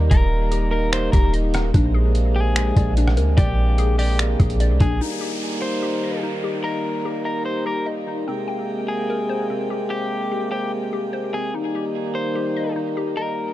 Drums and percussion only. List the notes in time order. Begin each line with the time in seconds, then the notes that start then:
0.11 kick, closed hi-hat
0.52 closed hi-hat
0.93 finger snap, closed hi-hat
1.13 kick, closed hi-hat
1.34 closed hi-hat
1.54 cross-stick, closed hi-hat
1.74 kick, closed hi-hat
2.15 closed hi-hat
2.56 finger snap, closed hi-hat
2.76 kick, closed hi-hat
2.97 closed hi-hat
3.08 cross-stick
3.17 closed hi-hat
3.38 kick, closed hi-hat
3.78 closed hi-hat
3.99 open hi-hat
4.19 finger snap, closed hi-hat
4.40 kick, closed hi-hat
4.50 closed hi-hat
4.60 closed hi-hat
4.80 kick, closed hi-hat